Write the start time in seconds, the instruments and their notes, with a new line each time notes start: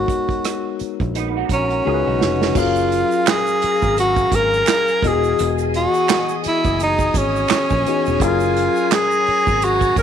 Already playing: tine electric piano G#3 B3 D#4 F#4 A#4 C#5, tenor saxophone F#4
0.08 kick, closed hi-hat
0.29 kick, closed hi-hat
0.44 cross-stick, closed hi-hat
0.79 muted fingered electric bass stroke, closed hi-hat
1.00 fingered electric bass A#1, kick, closed hi-hat
1.15 clean electric guitar B3 D#4, closed hi-hat
1.36 clean electric guitar D#4 F#4
1.49 fingered electric bass A#1, tenor saxophone C#4, clean electric guitar F#4 A#4, kick, closed hi-hat
1.70 closed hi-hat
1.85 fingered electric bass C#2, tine electric piano C#3 G#3 D#4 F#4 A#4, clean electric guitar F4 G#4
1.94 tine electric piano B4
2.06 fingered electric bass B1, clean electric guitar D#4 F#4
2.21 fingered electric bass F1, snare
2.42 snare
2.55 fingered electric bass F#1, tine electric piano F#3 C#4 G#4 F5, tenor saxophone F4, string machine G#4 F5 G#5 A#5, kick, crash, shaker
2.60 tine electric piano A#4
2.76 shaker
2.92 closed hi-hat
3.11 shaker
3.26 tenor saxophone G#4, finger snap, snare, clap, closed hi-hat, shaker
3.47 shaker
3.62 muted fingered electric bass stroke, closed hi-hat
3.82 fingered electric bass G#1, kick, shaker
3.97 tenor saxophone F#4, closed hi-hat, shaker
4.16 kick, shaker
4.32 fingered electric bass G#1, tenor saxophone A#4, kick, closed hi-hat, shaker
4.54 shaker
4.66 finger snap, snare, clap, closed hi-hat, shaker
4.88 shaker
5.02 fingered electric bass E1, tine electric piano E3 B3 F#4 D#5, string machine D#5 D#6, kick, closed hi-hat
5.07 tine electric piano G4, tenor saxophone G#4
5.14 tine electric piano G#4
5.24 shaker
5.39 fingered electric bass E1, closed hi-hat, shaker
5.58 shaker
5.74 tenor saxophone F#4, closed hi-hat
5.94 shaker
6.08 finger snap, snare, clap, closed hi-hat, shaker
6.29 shaker
6.44 tenor saxophone E4, muted fingered electric bass stroke, closed hi-hat
6.65 fingered electric bass F#1, kick, shaker
6.80 tenor saxophone D#4, closed hi-hat, shaker
6.99 kick, shaker
7.14 fingered electric bass G#1, tenor saxophone C#4, kick, closed hi-hat, shaker
7.36 shaker
7.48 finger snap, muted fingered electric bass stroke, snare, clap, closed hi-hat, shaker
7.70 fingered electric bass A#1, kick, shaker
7.86 tine electric piano E3 B3 D#4 F#4 G#4, closed hi-hat
8.06 fingered electric bass E1, shaker
8.20 fingered electric bass F#1, tine electric piano F#3 C#4 G#4, tenor saxophone F4, string machine G#4 C#5 A#5, kick, closed hi-hat, shaker
8.25 tine electric piano A#4
8.40 shaker
8.56 closed hi-hat
8.76 shaker
8.91 tenor saxophone G#4, finger snap, snare, clap, closed hi-hat, shaker
9.11 shaker
9.26 muted fingered electric bass stroke, open hi-hat
9.47 fingered electric bass G#1, kick, shaker
9.62 tenor saxophone F#4, closed hi-hat, shaker
9.81 kick, shaker
9.96 fingered electric bass G#1, tenor saxophone A#4, kick, closed hi-hat, shaker